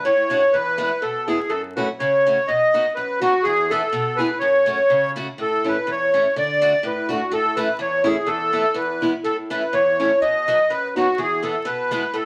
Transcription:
0.05 A2 C#5
0.30 A3 D4 F#4
0.53 E2 B4
0.78 G#3 B3 E4
1.02 B2 A4
1.27 G#3 B3 E4 G#4
1.50 F#2 A4
1.76 A3 C#4 F#4 B4
1.99 C#3 C#5
2.27 A3 C#4 F#4
2.48 B2 D#5
2.74 B3 D#4 F#4
2.95 F#2 B4
3.21 B3 D#4 F#4
3.43 E2 G#4
3.70 B3 E4 G#4 A4
3.93 B2
4.17 B3 E4 G#4 B4
4.39 F#2 C#5
4.66 A3 C#4 F#4
4.90 C#3
5.16 A3 C#4 F#4
5.38 A2 A4
5.64 A3 C#4 E4 B4
5.87 E2
5.91 C#5
6.14 A3 C#4 E4
6.36 D3 D5
6.61 A3 D4 F#4
6.83 A2 B4
7.09 A3 D4 F#4
7.31 A2 A4
7.57 A3 C#4 E4 B4
7.79 E2 C#5
8.04 A3 C#4 E4 G#4
8.27 E2 A4
8.53 A3 B3 E4
8.74 E2 B4
9.02 G#3 B3 E4
9.24 A2 A4
9.50 A3 C#4 E4 B4
9.73 E2 C#5
10.00 A3 C#4 E4
10.21 B2 D#5
10.48 F#3 B3 D#4
10.70 F#2 B4
10.96 F#3 B3 D#4 F#4
11.18 E2 G#4
11.42 G#3 B3 E4 A4
11.65 B2 B4
11.91 G#3 B3 E4
12.14 A2 A4

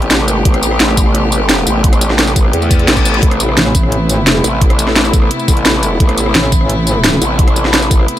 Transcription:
Already playing: A1 C3 A3 B3 G4
0.02 closed hi-hat
0.11 snare, closed hi-hat
0.28 closed hi-hat, tambourine
0.45 A1, kick, closed hi-hat
0.54 cross-stick, closed hi-hat
0.63 closed hi-hat, tambourine
0.71 cross-stick
0.80 A1, snare, closed hi-hat
0.89 cross-stick
0.97 kick, closed hi-hat, tambourine
1.06 cross-stick
1.15 closed hi-hat
1.32 closed hi-hat, tambourine
1.49 snare, closed hi-hat
1.67 A1, closed hi-hat, tambourine
1.84 kick, closed hi-hat
1.93 cross-stick, closed hi-hat, tambourine
2.01 closed hi-hat, tambourine
2.10 cross-stick, snare
2.19 snare, closed hi-hat
2.27 cross-stick, tambourine
2.36 kick, closed hi-hat, tambourine
2.45 cross-stick
2.53 E2, closed hi-hat, reverse cymbal
2.62 tambourine
2.71 kick, closed hi-hat, tambourine
2.79 closed hi-hat
2.88 A1, snare, closed hi-hat
2.97 kick, tambourine
3.05 closed hi-hat, tambourine
3.14 closed hi-hat
3.23 A1 E4, kick, closed hi-hat
3.31 cross-stick, closed hi-hat
3.40 closed hi-hat, tambourine
3.49 cross-stick
3.57 A1, snare, closed hi-hat
3.66 cross-stick
3.75 kick, closed hi-hat, tambourine
3.83 cross-stick
3.92 closed hi-hat
4.09 closed hi-hat, tambourine
4.27 snare, closed hi-hat
4.44 A1, closed hi-hat, tambourine
4.61 kick, closed hi-hat
4.70 cross-stick, closed hi-hat
4.79 closed hi-hat, tambourine
4.87 cross-stick, snare
4.96 snare, closed hi-hat
5.05 cross-stick, tambourine
5.13 kick, closed hi-hat, tambourine
5.22 cross-stick
5.31 closed hi-hat
5.39 tambourine
5.48 A1, kick, closed hi-hat, tambourine
5.57 closed hi-hat
5.65 snare, closed hi-hat
5.83 closed hi-hat, tambourine
6.00 A1, kick, closed hi-hat
6.09 cross-stick, closed hi-hat
6.18 closed hi-hat, tambourine
6.26 cross-stick
6.35 A1, snare, closed hi-hat
6.44 cross-stick
6.52 kick, closed hi-hat, tambourine
6.61 cross-stick
6.70 closed hi-hat
6.87 closed hi-hat, tambourine
7.04 snare, closed hi-hat
7.22 A1, closed hi-hat, tambourine
7.39 kick, closed hi-hat
7.48 cross-stick, closed hi-hat
7.56 closed hi-hat, tambourine
7.65 cross-stick, snare
7.74 snare, closed hi-hat
7.82 cross-stick, tambourine
7.91 kick, closed hi-hat, tambourine
8.00 cross-stick
8.08 closed hi-hat

